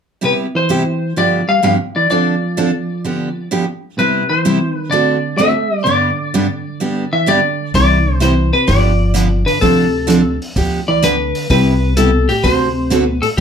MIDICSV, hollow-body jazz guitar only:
0, 0, Header, 1, 2, 480
1, 0, Start_track
1, 0, Key_signature, 0, "major"
1, 0, Tempo, 469484
1, 237, Time_signature, 4, 2, 24, 8
1, 13704, End_track
2, 0, Start_track
2, 0, Title_t, "Hollow-body jazz guitar"
2, 0, Program_c, 0, 26
2, 245, Note_on_c, 0, 48, 61
2, 332, Note_off_c, 0, 48, 0
2, 563, Note_on_c, 0, 52, 65
2, 1158, Note_off_c, 0, 52, 0
2, 1198, Note_on_c, 0, 53, 74
2, 1499, Note_off_c, 0, 53, 0
2, 1517, Note_on_c, 0, 55, 78
2, 1664, Note_off_c, 0, 55, 0
2, 1676, Note_on_c, 0, 55, 74
2, 1764, Note_off_c, 0, 55, 0
2, 2007, Note_on_c, 0, 52, 65
2, 2150, Note_off_c, 0, 52, 0
2, 2154, Note_on_c, 0, 53, 69
2, 3555, Note_off_c, 0, 53, 0
2, 4070, Note_on_c, 0, 48, 65
2, 4374, Note_off_c, 0, 48, 0
2, 4394, Note_on_c, 0, 52, 75
2, 4813, Note_off_c, 0, 52, 0
2, 4813, Note_on_c, 0, 51, 75
2, 4992, Note_off_c, 0, 51, 0
2, 5005, Note_on_c, 0, 50, 77
2, 5466, Note_off_c, 0, 50, 0
2, 5487, Note_on_c, 0, 57, 70
2, 5947, Note_off_c, 0, 57, 0
2, 5972, Note_on_c, 0, 50, 69
2, 7287, Note_on_c, 0, 52, 74
2, 7382, Note_off_c, 0, 50, 0
2, 7428, Note_off_c, 0, 52, 0
2, 7446, Note_on_c, 0, 50, 71
2, 7887, Note_off_c, 0, 50, 0
2, 7924, Note_on_c, 0, 52, 76
2, 8366, Note_off_c, 0, 52, 0
2, 8403, Note_on_c, 0, 52, 66
2, 8700, Note_off_c, 0, 52, 0
2, 8719, Note_on_c, 0, 48, 60
2, 8864, Note_off_c, 0, 48, 0
2, 8873, Note_on_c, 0, 53, 76
2, 9636, Note_off_c, 0, 53, 0
2, 9673, Note_on_c, 0, 50, 67
2, 9821, Note_off_c, 0, 50, 0
2, 9837, Note_on_c, 0, 48, 57
2, 10598, Note_off_c, 0, 48, 0
2, 11128, Note_on_c, 0, 52, 78
2, 11269, Note_off_c, 0, 52, 0
2, 11278, Note_on_c, 0, 50, 72
2, 11723, Note_off_c, 0, 50, 0
2, 11763, Note_on_c, 0, 48, 85
2, 12206, Note_off_c, 0, 48, 0
2, 12236, Note_on_c, 0, 47, 68
2, 12537, Note_off_c, 0, 47, 0
2, 12569, Note_on_c, 0, 45, 68
2, 12710, Note_off_c, 0, 45, 0
2, 12721, Note_on_c, 0, 48, 74
2, 13253, Note_off_c, 0, 48, 0
2, 13253, Note_on_c, 0, 47, 74
2, 13482, Note_off_c, 0, 47, 0
2, 13515, Note_on_c, 0, 45, 62
2, 13566, Note_off_c, 0, 45, 0
2, 13704, End_track
0, 0, End_of_file